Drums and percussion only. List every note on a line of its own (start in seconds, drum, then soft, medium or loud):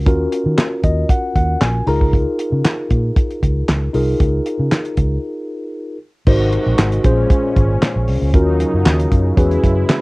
0.06 kick loud
0.06 closed hi-hat medium
0.32 closed hi-hat medium
0.58 snare loud
0.58 clap loud
0.58 closed hi-hat medium
0.84 kick medium
0.84 closed hi-hat medium
1.09 kick loud
1.09 closed hi-hat medium
1.36 kick medium
1.36 closed hi-hat medium
1.61 snare loud
1.61 clap medium
1.61 closed hi-hat medium
1.87 open hi-hat medium
2.01 kick medium
2.13 kick loud
2.13 closed hi-hat medium
2.39 closed hi-hat medium
2.65 snare loud
2.65 clap loud
2.65 closed hi-hat medium
2.90 kick medium
2.90 closed hi-hat medium
3.16 kick loud
3.16 closed hi-hat medium
3.31 closed hi-hat soft
3.43 kick medium
3.43 closed hi-hat medium
3.68 snare loud
3.68 clap medium
3.68 closed hi-hat medium
3.94 open hi-hat medium
4.20 kick loud
4.20 closed hi-hat medium
4.46 closed hi-hat medium
4.72 snare loud
4.72 clap loud
4.72 closed hi-hat medium
4.85 closed hi-hat soft
4.97 kick medium
4.97 closed hi-hat medium
6.27 kick loud
6.27 crash loud
6.53 closed hi-hat medium
6.78 snare loud
6.78 clap loud
6.78 closed hi-hat loud
6.92 closed hi-hat medium
7.04 kick medium
7.04 closed hi-hat medium
7.30 kick loud
7.30 closed hi-hat medium
7.56 kick medium
7.56 closed hi-hat medium
7.82 snare loud
7.82 clap medium
7.82 closed hi-hat medium
8.08 open hi-hat medium
8.34 kick loud
8.34 closed hi-hat medium
8.60 closed hi-hat medium
8.86 snare loud
8.86 clap loud
8.86 closed hi-hat medium
9.00 closed hi-hat medium
9.12 kick medium
9.12 closed hi-hat medium
9.37 kick loud
9.37 closed hi-hat medium
9.51 closed hi-hat soft
9.63 kick medium
9.63 closed hi-hat medium
9.89 snare loud
9.89 clap medium
9.89 closed hi-hat medium